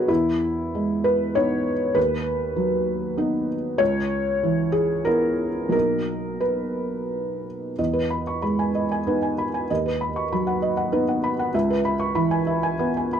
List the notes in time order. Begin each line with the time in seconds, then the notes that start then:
Already playing: B1 F#3 B3 D#4 F#4 G#4 A#4 B4 C#5 D#5
0.08 E2 E4
0.75 G#3
1.04 B4
1.35 B3 D#4 C#5
1.95 D#2 B4
2.56 F#3
3.17 B3 D#4
3.78 C#2 C#5
4.43 E3
4.72 G#4
5.05 B3 E4 A#4
5.69 B1 F#3 A#3 D#4 A#4
6.41 B4
7.79 E2 D#5
7.93 B4
8.10 B5
8.27 C#6
8.42 G#3 B5
8.59 G#5
8.75 D#5
8.91 G#5
9.07 B3 D#4 B4
9.22 G#5
9.38 B5
9.54 G#5
9.70 D#2 D#5
9.86 B4
10.01 B5
10.16 C#6
10.32 F#3 B5
10.47 F#5
10.62 D#5
10.77 F#5
10.92 B3 D#4 B4
11.08 F#5
11.24 B5
11.39 F#5
11.54 C#2 E5
11.70 B4
11.85 B5
12.00 C#6
12.15 E3 B5
12.31 G#5
12.47 E5
12.63 G#5
12.79 B3 B4
12.97 G#5
13.13 B5